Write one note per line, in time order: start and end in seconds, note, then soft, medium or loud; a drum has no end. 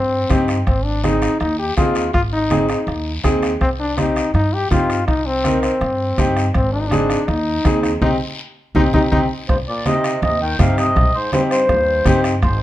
0.00 0.23 G2 medium
0.00 0.44 C4 medium
0.30 0.60 G2 medium
0.30 0.56 C4 medium
0.30 0.56 D#4 medium
0.30 0.56 G4 medium
0.30 bombo low medium
0.30 bombo rim medium
0.30 high conga medium
0.30 short guiro medium
0.48 bombo rim medium
0.48 short guiro medium
0.66 1.26 G#1 medium
0.66 0.86 C4 medium
0.66 bombo low medium
0.66 bombo rim medium
0.66 high conga soft
0.66 long guiro medium
0.84 1.05 D4 medium
1.04 1.29 C4 medium
1.04 1.40 D#4 medium
1.04 1.30 D#4 medium
1.04 1.30 G#4 medium
1.04 bombo rim medium
1.04 high conga medium
1.04 short guiro medium
1.22 bombo rim medium
1.22 short guiro medium
1.40 1.70 D#2 medium
1.40 1.58 D#4 medium
1.40 bombo rim medium
1.40 high conga soft
1.40 long guiro medium
1.59 1.76 G4 medium
1.77 2.07 D#2 medium
1.77 2.03 C4 medium
1.77 2.03 D#4 medium
1.77 2.11 F4 medium
1.77 2.03 G#4 medium
1.77 bombo low medium
1.77 bombo rim medium
1.77 high conga medium
1.77 short guiro medium
1.95 bombo rim medium
1.95 short guiro medium
2.14 2.73 G#1 medium
2.14 2.22 F4 medium
2.14 bombo low medium
2.14 bombo rim medium
2.14 high conga soft
2.14 long guiro medium
2.33 2.67 D#4 medium
2.50 2.76 C4 medium
2.50 2.77 D#4 medium
2.50 2.77 G#4 medium
2.50 bombo rim medium
2.50 high conga medium
2.50 short guiro medium
2.69 3.12 D#4 medium
2.69 bombo rim medium
2.69 short guiro medium
2.87 3.17 D#2 medium
2.87 bombo rim medium
2.87 high conga soft
2.87 long guiro medium
3.24 3.54 D#2 medium
3.24 3.50 C4 medium
3.24 3.50 D#4 medium
3.24 3.50 G#4 medium
3.24 bombo low medium
3.24 bombo rim medium
3.24 high conga medium
3.24 short guiro medium
3.43 bombo rim medium
3.43 short guiro medium
3.61 4.20 C2 medium
3.61 3.69 C4 medium
3.61 bombo low medium
3.61 bombo rim medium
3.61 high conga soft
3.61 long guiro medium
3.80 4.00 D4 medium
3.97 4.23 C4 medium
3.97 4.23 D#4 medium
3.97 4.34 D#4 medium
3.97 4.24 G4 medium
3.97 bombo rim medium
3.97 high conga medium
3.97 short guiro medium
4.16 bombo rim medium
4.16 short guiro medium
4.34 4.64 G2 medium
4.34 4.55 D#4 medium
4.34 bombo rim medium
4.34 high conga soft
4.34 long guiro medium
4.53 4.70 G4 loud
4.71 5.01 G2 medium
4.71 4.97 C4 medium
4.71 4.97 D#4 medium
4.71 5.05 F4 medium
4.71 4.97 G4 medium
4.71 bombo low medium
4.71 bombo rim medium
4.71 high conga medium
4.71 short guiro medium
4.90 bombo rim medium
4.90 short guiro medium
5.08 5.67 C2 medium
5.08 5.27 D#4 medium
5.08 bombo low medium
5.08 bombo rim medium
5.08 high conga soft
5.08 long guiro medium
5.26 5.62 C4 medium
5.44 5.70 C4 medium
5.44 5.71 D#4 medium
5.44 5.71 A#4 medium
5.44 bombo rim medium
5.44 high conga medium
5.44 short guiro medium
5.62 6.32 C4 medium
5.62 bombo rim medium
5.62 short guiro medium
5.81 6.11 G2 medium
5.81 bombo rim medium
5.81 high conga soft
5.81 long guiro medium
6.18 6.47 G2 medium
6.18 6.44 C4 medium
6.18 6.44 D#4 medium
6.18 6.44 G4 medium
6.18 bombo low medium
6.18 bombo rim medium
6.18 high conga medium
6.18 short guiro medium
6.37 bombo rim medium
6.37 short guiro medium
6.54 7.14 G#1 medium
6.54 6.72 C4 medium
6.54 bombo low medium
6.54 bombo rim medium
6.54 high conga soft
6.54 long guiro medium
6.73 6.82 D4 medium
6.81 6.89 D#4 medium
6.87 7.29 D4 medium
6.91 7.17 C4 medium
6.91 7.18 D#4 medium
6.91 7.18 G#4 medium
6.91 bombo rim medium
6.91 high conga medium
6.91 short guiro medium
7.10 bombo rim medium
7.10 short guiro medium
7.28 7.58 D#2 medium
7.28 7.82 D#4 medium
7.28 bombo rim medium
7.28 high conga soft
7.28 long guiro medium
7.65 7.94 D#2 medium
7.65 7.91 C4 medium
7.65 7.91 D#4 medium
7.65 7.91 G#4 medium
7.65 bombo low medium
7.65 bombo rim medium
7.65 high conga medium
7.65 short guiro medium
7.83 7.91 D#4 medium
7.83 bombo rim medium
7.83 short guiro medium
8.02 8.15 C2 medium
8.02 8.14 C4 medium
8.02 8.11 D#4 medium
8.02 8.14 D#4 medium
8.02 8.14 G4 medium
8.02 bombo low medium
8.02 high conga medium
8.02 long guiro medium
8.75 8.89 C2 medium
8.75 8.87 C4 medium
8.75 8.84 D#4 medium
8.75 8.87 D#4 medium
8.75 8.87 G4 medium
8.75 bombo low medium
8.75 high conga medium
8.75 long guiro medium
8.93 9.07 C2 medium
8.93 9.06 C4 medium
8.93 9.02 D#4 medium
8.93 9.06 D#4 medium
8.93 9.06 G4 medium
8.93 bombo low medium
8.93 high conga medium
8.93 long guiro medium
9.12 9.26 C2 medium
9.12 9.24 C4 medium
9.12 9.21 D#4 medium
9.12 9.24 D#4 medium
9.12 9.24 G4 medium
9.12 bombo low medium
9.12 high conga medium
9.12 long guiro medium
9.49 9.64 C2 medium
9.49 9.57 G2 medium
9.49 9.57 C5 medium
9.49 bombo low medium
9.49 bombo rim medium
9.49 high conga soft
9.49 low conga medium
9.49 long guiro medium
9.68 9.85 A#2 medium
9.68 9.85 D5 medium
9.86 10.20 C3 medium
9.86 10.11 C4 medium
9.86 10.12 D#4 medium
9.86 10.12 G4 medium
9.86 10.20 D#5 medium
9.86 bombo rim medium
9.86 high conga medium
9.86 short guiro medium
10.04 bombo rim medium
10.04 short guiro medium
10.22 10.52 D#2 medium
10.22 10.40 C3 medium
10.22 10.40 D#5 medium
10.22 bombo rim medium
10.22 high conga soft
10.22 low conga medium
10.22 long guiro medium
10.41 10.58 D#3 medium
10.41 10.59 G5 medium
10.59 10.98 G2 medium
10.59 10.76 C3 medium
10.59 10.85 C4 medium
10.59 10.85 D#4 medium
10.59 10.85 G4 medium
10.59 10.77 F5 medium
10.59 bombo low medium
10.59 bombo rim medium
10.59 high conga medium
10.59 low conga medium
10.59 short guiro medium
10.78 11.12 C3 medium
10.78 11.16 D#5 medium
10.78 bombo rim medium
10.78 short guiro medium
10.96 11.11 C2 medium
10.96 bombo low medium
10.96 bombo rim medium
10.96 high conga soft
10.96 low conga medium
10.96 long guiro medium
11.15 11.32 G#2 medium
11.15 11.31 C5 medium
11.32 11.41 G2 medium
11.32 11.58 C4 medium
11.32 11.59 D#4 medium
11.32 11.59 G4 medium
11.32 11.41 C5 medium
11.32 bombo rim medium
11.32 high conga medium
11.32 short guiro medium
11.51 12.21 G2 medium
11.51 12.20 C5 loud
11.51 bombo rim medium
11.51 short guiro medium
11.69 11.98 D#2 medium
11.69 bombo rim medium
11.69 high conga soft
11.69 low conga medium
11.69 long guiro medium
12.05 12.44 G2 medium
12.05 12.31 C4 medium
12.05 12.32 D#4 medium
12.05 12.32 G4 loud
12.05 bombo low medium
12.05 bombo rim medium
12.05 high conga medium
12.05 short guiro medium
12.24 bombo rim medium
12.24 short guiro medium
12.42 12.57 G#1 medium
12.42 12.60 G#2 medium
12.42 12.60 C5 medium
12.42 bombo low medium
12.42 bombo rim medium
12.42 high conga soft
12.42 long guiro medium